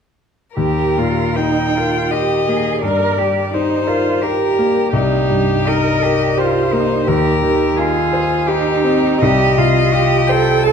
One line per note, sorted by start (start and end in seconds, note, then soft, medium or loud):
0.56 2.79 D#2 soft
0.56 1.00 G4 soft
0.56 1.38 A#4 soft
0.97 1.60 A#2 soft
0.97 1.38 F4 soft
1.36 1.78 D#4 soft
1.36 1.98 D#4 soft
1.36 2.13 G5 soft
1.77 2.14 F4 soft
1.77 2.35 A#4 soft
2.11 2.49 G4 soft
2.11 2.69 G4 soft
2.11 2.82 D#5 soft
2.48 2.83 A#3 soft
2.48 2.83 G#4 soft
2.82 4.89 G2 soft
2.82 3.20 A#4 soft
2.82 3.55 D5 soft
3.18 3.74 G3 soft
3.18 3.53 G4 soft
3.54 3.89 D#4 soft
3.54 4.10 D#4 soft
3.54 4.24 C5 soft
3.87 4.23 F4 soft
3.87 4.44 A#4 soft
4.21 4.96 G4 soft
4.21 4.79 G4 soft
4.21 4.92 A#4 soft
4.59 4.93 A#3 soft
4.93 7.03 C2 soft
4.93 5.70 D#4 soft
4.93 5.68 G4 soft
5.29 5.89 G2 soft
5.67 6.24 D#4 soft
5.67 6.05 A#4 soft
5.67 6.40 D#5 medium
6.03 6.41 G4 soft
6.03 6.59 A#4 soft
6.38 6.74 F4 soft
6.38 6.93 G4 soft
6.38 7.09 C5 soft
6.73 7.07 A#3 soft
6.73 7.07 D#4 soft
7.07 9.18 D#2 soft
7.07 7.80 G4 soft
7.07 7.78 A#4 medium
7.42 7.98 D#3 soft
7.76 8.33 D#4 soft
7.76 8.51 F4 soft
7.76 8.49 G#4 medium
8.13 8.70 C5 soft
8.47 8.83 D#4 soft
8.47 9.21 G4 medium
8.47 9.08 G4 soft
8.84 9.22 C4 soft
8.84 9.24 D#4 soft
9.21 10.72 C2 soft
9.21 9.60 G4 medium
9.21 10.29 D#5 medium
9.58 10.15 C3 soft
9.58 9.95 F4 soft
9.93 10.51 F4 soft
9.93 10.32 G4 soft
10.27 10.64 A4 medium
10.27 10.72 C5 soft
10.27 10.65 G5 medium
10.63 10.72 A4 soft
10.63 10.72 A5 medium